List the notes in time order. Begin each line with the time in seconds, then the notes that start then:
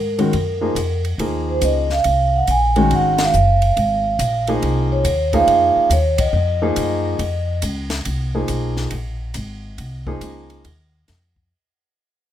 Already playing: G#2 A#4
0.19 D#3 G#3 C#4 F#4, ride
0.33 F#2, ride
0.61 F3 A#3 D#4 G#4
0.75 F2, hi-hat pedal, ride
1.05 ride
1.18 D#2 F3 A#3 D#4 G#4, ride
1.49 C5
1.61 C#2 D#5, hi-hat pedal, ride
1.90 F5, snare
2.04 C2, ride
2.36 F#5
2.47 A#1 G#5, hi-hat pedal, ride
2.76 D#3 G#3 C#4 F#4, ride
2.91 G#1, ride
2.95 F#5
3.18 snare, ride
3.23 F5
3.33 F#1, hi-hat pedal
3.62 ride
3.66 F5
3.77 G#1, ride
4.19 A#1, hi-hat pedal, ride
4.47 F3 A#3 D#4 G#4, ride
4.62 C2, ride
4.92 C#5
5.05 D#2, hi-hat pedal, ride
5.33 F3 A#3 D#4 G#4 F5, kick, ride
5.47 F2, ride
5.76 muted upright bass stroke
5.90 D#2 C#5, hi-hat pedal, ride
6.18 D#5, kick, ride
6.33 F2
6.62 F3 A#3 D#4 G#4
6.76 F#2, hi-hat pedal, ride
7.19 F2, ride
7.62 C#2, hi-hat pedal, ride
7.90 snare, ride
8.05 C2, ride
8.35 F3 A#3 D#4 G#4
8.48 B1, hi-hat pedal, ride
8.77 snare
8.90 A#1, ride
9.34 G#1, hi-hat pedal, ride
9.78 C2, ride
10.07 F3 A#3 D#4 G#4, kick
10.21 C#2, hi-hat pedal, ride
10.50 ride
10.65 D#2, ride
11.08 F2, snare, hi-hat pedal, ride
11.36 kick